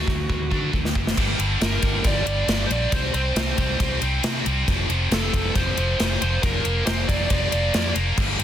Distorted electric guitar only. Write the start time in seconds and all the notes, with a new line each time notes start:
0.08 D3 A3
0.30 D3 A3
0.51 D3 A3 D4
0.74 D3 A3
0.96 D3 A3
1.18 G2 D3 G3
1.39 G2 D3 G3
1.61 G2 D3 G3
1.83 G2 D3 G3
2.05 G2 D3 G3
2.26 G2 D3 G3
2.49 G2 D3 G3
2.70 G2 D3 G3
2.92 C3 G3 C4
3.14 C3 G3 C4
3.36 C3 G3 C4
3.57 C3 G3 C4
3.79 C3 G3 C4
4.02 C3 G3 C4
4.23 C3 G3 C4
4.46 C3 G3 C4
4.68 F2 C3 F3
4.89 F2 C3 F3
5.12 F2 C3 F3
5.34 F2 C3 F3
5.57 F2 C3 F3
5.78 F2 C3 F3
5.99 F2 C3 F3
6.21 F2 C3 F3
6.43 A#2 F3 A#3
6.64 A#2 F3 A#3
6.86 A#2 F3 A#3
7.08 A#2 F3 A#3
7.30 A#2 F3 A#3
7.52 A#2 F3 A#3
7.74 A#2 F3 A#3
7.95 A#2 F3 A#3
8.17 G2 D3 G3
8.39 G2 D3 G3